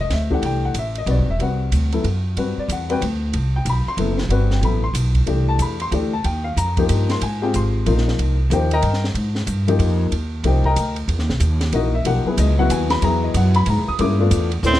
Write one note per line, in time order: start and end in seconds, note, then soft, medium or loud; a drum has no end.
0.01 0.11 D#5 loud
0.10 0.41 D2 medium
0.10 0.32 E5 medium
0.10 snare soft
0.10 ride medium
0.30 0.73 E3 medium
0.30 0.73 A3 medium
0.30 0.73 D4 medium
0.30 0.73 G4 medium
0.30 0.44 F#5 medium
0.30 kick medium
0.42 0.74 C2 medium
0.42 0.64 G5 medium
0.42 ride medium
0.65 0.76 F#5 medium
0.74 1.06 A1 medium
0.74 hi-hat pedal medium
0.74 ride medium
0.79 0.97 E5 medium
0.95 1.09 D#5 medium
0.95 ride soft
1.06 1.19 B1 medium
1.06 1.26 G3 medium
1.06 1.26 C4 soft
1.06 1.26 F#4 soft
1.06 1.26 B4 medium
1.06 ride medium
1.10 1.29 D5 medium
1.18 1.28 G1 medium
1.28 1.39 E1 medium
1.28 1.41 E5 medium
1.39 1.71 C2 medium
1.39 1.89 G3 medium
1.39 1.89 C4 soft
1.39 1.89 F#4 soft
1.39 1.89 B4 medium
1.39 1.91 F#5 medium
1.39 ride medium
1.72 2.03 D2 medium
1.72 hi-hat pedal medium
1.72 ride medium
1.92 2.03 F#3 medium
1.92 2.04 B3 medium
1.92 2.04 E4 medium
1.92 2.04 A4 medium
1.92 ride soft
2.04 2.36 F#2 medium
2.04 ride medium
2.37 2.56 G2 medium
2.37 2.86 G3 soft
2.37 2.86 C4 medium
2.37 2.86 F#4 medium
2.37 2.86 B4 medium
2.37 ride medium
2.57 2.70 D5 medium
2.57 muted upright bass stroke soft
2.68 3.00 E2 medium
2.68 2.91 F#5 medium
2.68 hi-hat pedal medium
2.68 ride medium
2.89 3.00 G3 medium
2.89 3.00 C4 medium
2.89 3.01 F#4 medium
2.89 3.01 B4 medium
2.89 3.02 G5 medium
2.89 ride soft
3.01 3.33 D2 loud
3.01 ride medium
3.33 3.65 C2 medium
3.33 ride medium
3.56 3.67 G5 medium
3.65 3.85 B1 medium
3.65 hi-hat pedal soft
3.65 ride medium
3.70 3.88 B5 medium
3.86 3.99 C6 loud
3.86 muted upright bass stroke soft
3.97 4.28 F#1 medium
3.97 4.17 F#3 medium
3.97 4.17 B3 medium
3.97 4.17 E4 medium
3.97 4.17 A4 medium
3.97 ride medium
4.18 snare soft
4.29 4.61 G1 medium
4.29 4.62 G3 medium
4.29 4.62 C4 medium
4.29 4.62 F#4 medium
4.29 4.62 B4 medium
4.29 ride medium
4.51 4.63 G5 medium
4.51 snare soft
4.61 4.93 A1 medium
4.61 4.82 F#3 medium
4.61 4.82 B3 medium
4.61 4.82 E4 soft
4.61 4.82 A4 medium
4.61 4.84 B5 medium
4.61 ride medium
4.84 4.95 C6 loud
4.94 5.26 B1 medium
4.94 hi-hat pedal medium
4.94 ride medium
5.15 kick soft
5.15 ride soft
5.26 5.58 C2 medium
5.26 5.76 E3 medium
5.26 5.76 A3 medium
5.26 5.76 D4 medium
5.26 5.76 G4 medium
5.26 ride medium
5.49 5.60 A5 medium
5.59 5.91 E2 medium
5.59 5.81 B5 medium
5.59 hi-hat pedal medium
5.59 ride medium
5.80 5.88 C6 loud
5.80 ride soft
5.91 6.23 D2 loud
5.91 6.11 E3 medium
5.91 6.11 A3 medium
5.91 6.11 D4 medium
5.91 6.11 G4 medium
5.91 ride medium
6.13 6.25 A5 medium
6.24 6.56 D#2 medium
6.24 6.45 G5 medium
6.24 ride medium
6.44 6.56 F5 medium
6.57 6.88 F2 medium
6.57 7.06 A#5 medium
6.57 hi-hat pedal medium
6.57 ride medium
6.77 7.20 F3 medium
6.77 7.20 A#3 medium
6.77 7.20 D#4 medium
6.77 7.20 G4 medium
6.77 kick medium
6.77 ride medium
6.89 7.21 G2 medium
6.89 hi-hat pedal medium
6.89 ride medium
7.09 7.22 C6 loud
7.09 snare medium
7.09 ride soft
7.21 7.53 G#2 medium
7.21 7.42 G#5 medium
7.21 ride medium
7.42 7.84 C4 medium
7.42 7.84 F4 medium
7.42 7.84 G4 medium
7.42 7.84 G#4 medium
7.42 7.54 G5 medium
7.54 7.85 G#1 medium
7.54 8.04 C6 medium
7.54 hi-hat pedal medium
7.54 ride medium
7.86 8.18 A#1 loud
7.86 8.35 F3 medium
7.86 8.35 A#3 medium
7.86 8.35 D#4 medium
7.86 8.36 F4 medium
7.86 ride medium
7.98 snare soft
8.08 snare soft
8.19 8.50 C2 medium
8.19 ride medium
8.50 8.82 D#2 loud
8.50 8.69 F3 medium
8.50 8.70 A#3 medium
8.50 8.70 D#4 medium
8.50 8.70 G4 medium
8.50 8.72 C5 medium
8.50 8.72 D#5 medium
8.50 8.72 G5 medium
8.50 hi-hat pedal medium
8.50 ride medium
8.71 9.02 A#4 medium
8.71 9.02 D#5 loud
8.71 9.03 G5 medium
8.71 9.02 A#5 loud
8.71 ride medium
8.82 9.14 G2 loud
8.82 ride medium
8.93 snare soft
9.04 snare soft
9.14 9.46 G#2 medium
9.14 ride medium
9.35 snare soft
9.47 9.78 G2 medium
9.47 hi-hat pedal soft
9.47 ride medium
9.67 10.09 F3 medium
9.67 10.10 A#3 medium
9.67 10.10 D#4 medium
9.67 10.10 G4 medium
9.67 ride medium
9.79 10.11 F2 loud
9.79 ride medium
10.11 10.43 D#2 medium
10.11 ride medium
10.43 10.75 C2 medium
10.43 10.63 F3 medium
10.43 10.63 A#3 medium
10.43 10.63 D#4 medium
10.43 10.63 G4 medium
10.43 10.66 C5 medium
10.43 10.65 D#5 medium
10.43 10.64 G5 medium
10.43 ride medium
10.64 10.95 A#4 medium
10.64 10.96 D#5 medium
10.64 10.95 G5 medium
10.64 10.95 A#5 loud
10.64 kick medium
10.76 11.07 D2 medium
10.76 hi-hat pedal medium
10.76 ride medium
10.96 ride soft
11.08 11.19 E2 medium
11.08 ride medium
11.19 11.28 D#2 medium
11.19 snare soft
11.29 11.39 B1 medium
11.29 snare soft
11.40 11.72 D#2 loud
11.40 hi-hat pedal medium
11.40 ride medium
11.61 snare soft
11.61 ride medium
11.73 12.04 A#1 medium
11.73 11.92 E3 medium
11.73 11.92 A#3 medium
11.73 11.92 D#4 medium
11.73 11.92 F#4 medium
11.73 11.94 D#5 medium
11.73 ride medium
11.95 12.06 E5 medium
12.05 12.24 B1 medium
12.05 12.24 F3 medium
12.05 12.24 A#3 medium
12.05 12.24 D#4 medium
12.05 12.25 G4 medium
12.05 12.26 F#5 loud
12.05 ride medium
12.25 12.54 F#3 medium
12.25 12.55 B3 medium
12.25 12.55 E4 medium
12.25 12.55 G#4 medium
12.25 12.38 B4 medium
12.25 muted upright bass stroke soft
12.37 12.69 C#2 medium
12.37 12.59 D#5 medium
12.37 hi-hat pedal medium
12.37 ride medium
12.58 13.00 F#3 medium
12.58 13.01 B3 medium
12.58 13.01 E4 medium
12.58 13.01 F#4 medium
12.58 12.70 F#5 loud
12.70 13.01 D#2 loud
12.70 12.91 G#5 medium
12.70 hi-hat pedal medium
12.70 ride medium
12.90 13.02 B5 loud
12.90 snare medium
12.90 ride medium
13.02 13.34 E2 loud
13.02 13.92 F#3 medium
13.02 13.92 B3 medium
13.02 13.93 E4 medium
13.02 13.93 G#4 medium
13.02 13.23 A#5 loud
13.02 ride medium
13.24 13.35 D#5 medium
13.34 13.66 F#2 loud
13.34 13.56 F#5 medium
13.34 hi-hat pedal medium
13.34 ride medium
13.54 13.67 B5 loud
13.54 ride medium
13.66 13.77 G#2 loud
13.66 13.88 A#5 medium
13.66 ride medium
13.77 13.88 E2 medium
13.88 13.98 D#2 medium
13.88 13.99 D#6 loud
13.99 14.30 G2 medium
13.99 14.18 G#3 medium
13.99 14.18 A#3 medium
13.99 14.18 C#4 medium
13.99 14.18 E4 medium
13.99 14.49 D6 loud
13.99 ride medium
14.19 14.48 A3 medium
14.19 14.48 B3 medium
14.19 14.48 D4 medium
14.19 14.48 F4 medium
14.31 14.62 E2 loud
14.31 hi-hat pedal medium
14.31 ride medium
14.52 ride medium
14.63 14.80 D2 loud
14.63 14.80 A2 medium
14.63 14.80 A3 medium
14.63 14.80 C4 medium
14.63 14.80 D4 medium
14.63 14.80 E4 medium
14.63 14.80 B4 medium
14.63 hi-hat pedal medium
14.74 snare medium